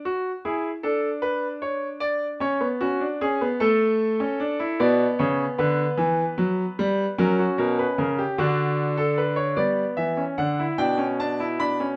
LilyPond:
<<
  \new Staff \with { instrumentName = "Grand piano" } { \time 6/8 \key b \minor \tempo 4. = 50 << { fis'8 gis'8 a'8 b'8 cis''8 d''8 | cis''8 fis'8 gis'8 a'4. | d''8 cis''8 b'2 | ais'16 fis'16 ais'16 b'16 ais'16 g'16 fis'8. a'16 b'16 cis''16 |
\key g \lydian d''8 e''8 fis''8 g''8 a''8 b''8 | } \\ { r8 e'8 d'2 | cis'16 b16 cis'16 d'16 cis'16 b16 a8. cis'16 d'16 e'16 | b2. | cis'4. d'4. |
b8. cis'16 d'16 e'16 d'16 cis'16 d'16 e'16 d'16 cis'16 | } >> }
  \new Staff \with { instrumentName = "Grand piano" } { \clef bass \time 6/8 \key b \minor r2. | r2. | b,8 cis8 d8 e8 fis8 g8 | fis8 b,8 cis8 d4. |
\key g \lydian g8 e8 d8 b,4. | }
>>